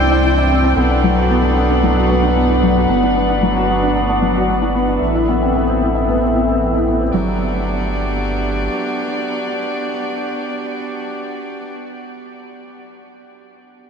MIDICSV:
0, 0, Header, 1, 4, 480
1, 0, Start_track
1, 0, Key_signature, 1, "major"
1, 0, Tempo, 530973
1, 692, Time_signature, 4, 2, 24, 8
1, 12565, End_track
2, 0, Start_track
2, 0, Title_t, "String quartet"
2, 0, Program_c, 0, 48
2, 0, Note_on_c, 0, 64, 70
2, 0, Note_on_c, 0, 72, 65
2, 0, Note_on_c, 0, 74, 62
2, 0, Note_on_c, 0, 79, 79
2, 671, Note_off_c, 0, 64, 0
2, 672, Note_off_c, 0, 72, 0
2, 672, Note_off_c, 0, 74, 0
2, 672, Note_off_c, 0, 79, 0
2, 690, Note_on_c, 0, 69, 65
2, 690, Note_on_c, 0, 78, 74
2, 692, Note_on_c, 0, 62, 74
2, 692, Note_on_c, 0, 71, 63
2, 2592, Note_off_c, 0, 69, 0
2, 2593, Note_off_c, 0, 62, 0
2, 2614, Note_on_c, 0, 62, 71
2, 4495, Note_off_c, 0, 78, 0
2, 4514, Note_off_c, 0, 62, 0
2, 4536, Note_on_c, 0, 76, 74
2, 4537, Note_on_c, 0, 69, 61
2, 6416, Note_off_c, 0, 71, 0
2, 6435, Note_off_c, 0, 69, 0
2, 6435, Note_off_c, 0, 76, 0
2, 6453, Note_on_c, 0, 74, 68
2, 6454, Note_on_c, 0, 62, 53
2, 6454, Note_on_c, 0, 66, 56
2, 6455, Note_on_c, 0, 67, 57
2, 6456, Note_on_c, 0, 59, 63
2, 10597, Note_off_c, 0, 74, 0
2, 10598, Note_off_c, 0, 62, 0
2, 10599, Note_off_c, 0, 66, 0
2, 10600, Note_off_c, 0, 59, 0
2, 10600, Note_off_c, 0, 67, 0
2, 12565, End_track
3, 0, Start_track
3, 0, Title_t, "Felt piano"
3, 0, Program_c, 1, 0
3, 0, Control_c, 1, 64, 127
3, 0, Note_on_c, 1, 52, 67
3, 0, Note_on_c, 1, 60, 66
3, 0, Note_on_c, 1, 62, 69
3, 0, Note_on_c, 1, 64, 68
3, 95, Note_off_c, 1, 62, 0
3, 95, Note_on_c, 1, 62, 75
3, 207, Note_off_c, 1, 62, 0
3, 215, Note_off_c, 1, 52, 0
3, 215, Note_on_c, 1, 52, 74
3, 327, Note_off_c, 1, 52, 0
3, 337, Note_off_c, 1, 64, 0
3, 337, Note_on_c, 1, 64, 72
3, 449, Note_off_c, 1, 64, 0
3, 457, Note_off_c, 1, 60, 0
3, 457, Note_on_c, 1, 60, 74
3, 568, Note_off_c, 1, 60, 0
3, 576, Note_on_c, 1, 62, 64
3, 688, Note_off_c, 1, 62, 0
3, 695, Note_on_c, 1, 59, 69
3, 705, Control_c, 1, 64, 0
3, 762, Note_off_c, 1, 59, 0
3, 817, Note_on_c, 1, 62, 72
3, 881, Control_c, 1, 64, 127
3, 928, Note_off_c, 1, 62, 0
3, 936, Note_on_c, 1, 54, 66
3, 1048, Note_off_c, 1, 54, 0
3, 1057, Note_on_c, 1, 66, 65
3, 1169, Note_off_c, 1, 66, 0
3, 1175, Note_on_c, 1, 59, 78
3, 1288, Note_off_c, 1, 59, 0
3, 1297, Note_on_c, 1, 62, 63
3, 1409, Note_off_c, 1, 62, 0
3, 1415, Note_on_c, 1, 59, 72
3, 1482, Note_off_c, 1, 59, 0
3, 1536, Note_on_c, 1, 62, 68
3, 1648, Note_off_c, 1, 62, 0
3, 1656, Note_on_c, 1, 54, 72
3, 1768, Note_off_c, 1, 54, 0
3, 1774, Note_on_c, 1, 66, 68
3, 1887, Note_off_c, 1, 66, 0
3, 1895, Note_on_c, 1, 59, 61
3, 2007, Note_off_c, 1, 59, 0
3, 2015, Note_on_c, 1, 62, 64
3, 2128, Note_off_c, 1, 62, 0
3, 2136, Note_on_c, 1, 59, 72
3, 2202, Note_off_c, 1, 59, 0
3, 2257, Note_on_c, 1, 62, 65
3, 2368, Note_off_c, 1, 62, 0
3, 2377, Note_on_c, 1, 54, 67
3, 2488, Note_off_c, 1, 54, 0
3, 2498, Note_on_c, 1, 66, 60
3, 2609, Note_off_c, 1, 66, 0
3, 2613, Note_on_c, 1, 59, 72
3, 2625, Control_c, 1, 64, 0
3, 2726, Note_off_c, 1, 59, 0
3, 2738, Note_on_c, 1, 62, 68
3, 2762, Control_c, 1, 64, 127
3, 2849, Note_off_c, 1, 62, 0
3, 2856, Note_on_c, 1, 59, 64
3, 2923, Note_off_c, 1, 59, 0
3, 2976, Note_on_c, 1, 62, 63
3, 3088, Note_off_c, 1, 62, 0
3, 3095, Note_on_c, 1, 54, 78
3, 3207, Note_off_c, 1, 54, 0
3, 3217, Note_on_c, 1, 66, 63
3, 3328, Note_off_c, 1, 66, 0
3, 3337, Note_on_c, 1, 59, 67
3, 3449, Note_off_c, 1, 59, 0
3, 3457, Note_on_c, 1, 62, 65
3, 3569, Note_off_c, 1, 62, 0
3, 3577, Note_on_c, 1, 59, 74
3, 3643, Note_off_c, 1, 59, 0
3, 3697, Note_on_c, 1, 62, 68
3, 3808, Note_off_c, 1, 62, 0
3, 3813, Note_on_c, 1, 54, 63
3, 3926, Note_off_c, 1, 54, 0
3, 3932, Note_on_c, 1, 66, 69
3, 4046, Note_off_c, 1, 66, 0
3, 4053, Note_on_c, 1, 59, 68
3, 4166, Note_off_c, 1, 59, 0
3, 4174, Note_on_c, 1, 62, 67
3, 4287, Note_off_c, 1, 62, 0
3, 4294, Note_on_c, 1, 59, 65
3, 4361, Note_off_c, 1, 59, 0
3, 4412, Note_on_c, 1, 62, 62
3, 4526, Note_off_c, 1, 62, 0
3, 4537, Note_on_c, 1, 52, 64
3, 4542, Control_c, 1, 64, 0
3, 4648, Note_off_c, 1, 52, 0
3, 4656, Note_on_c, 1, 64, 65
3, 4713, Control_c, 1, 64, 127
3, 4768, Note_off_c, 1, 64, 0
3, 4777, Note_on_c, 1, 59, 64
3, 4888, Note_off_c, 1, 59, 0
3, 4897, Note_on_c, 1, 60, 54
3, 5009, Note_off_c, 1, 60, 0
3, 5019, Note_on_c, 1, 59, 71
3, 5084, Note_off_c, 1, 59, 0
3, 5136, Note_on_c, 1, 60, 60
3, 5248, Note_off_c, 1, 60, 0
3, 5255, Note_on_c, 1, 52, 64
3, 5367, Note_off_c, 1, 52, 0
3, 5378, Note_on_c, 1, 64, 58
3, 5489, Note_off_c, 1, 64, 0
3, 5500, Note_on_c, 1, 59, 68
3, 5610, Note_off_c, 1, 59, 0
3, 5617, Note_on_c, 1, 60, 61
3, 5728, Note_off_c, 1, 60, 0
3, 5738, Note_on_c, 1, 59, 61
3, 5803, Note_off_c, 1, 59, 0
3, 5857, Note_on_c, 1, 60, 64
3, 5968, Note_off_c, 1, 60, 0
3, 5976, Note_on_c, 1, 52, 65
3, 6088, Note_off_c, 1, 52, 0
3, 6092, Note_on_c, 1, 64, 62
3, 6206, Note_off_c, 1, 64, 0
3, 6214, Note_on_c, 1, 59, 59
3, 6327, Note_off_c, 1, 59, 0
3, 6331, Note_on_c, 1, 60, 58
3, 6446, Note_off_c, 1, 60, 0
3, 6451, Note_on_c, 1, 54, 68
3, 6463, Control_c, 1, 64, 0
3, 6622, Control_c, 1, 64, 127
3, 6675, Note_off_c, 1, 54, 0
3, 12562, Control_c, 1, 64, 0
3, 12565, End_track
4, 0, Start_track
4, 0, Title_t, "Sub bass"
4, 0, Program_c, 2, 38
4, 0, Note_on_c, 2, 36, 87
4, 668, Note_off_c, 2, 36, 0
4, 690, Note_on_c, 2, 35, 89
4, 2587, Note_off_c, 2, 35, 0
4, 2613, Note_on_c, 2, 31, 77
4, 4509, Note_off_c, 2, 31, 0
4, 4534, Note_on_c, 2, 33, 77
4, 6429, Note_off_c, 2, 33, 0
4, 6451, Note_on_c, 2, 31, 83
4, 7855, Note_off_c, 2, 31, 0
4, 12565, End_track
0, 0, End_of_file